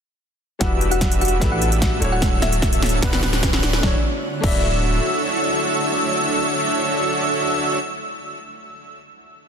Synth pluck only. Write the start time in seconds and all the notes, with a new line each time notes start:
0.61 F#4 F#5
0.91 F#4 F#5
1.21 F#4 F#5
1.52 F#4 F#5
1.82 F#4 F#5
2.12 F#4 F#5
2.42 E4 E5
3.83 D5
4.44 D5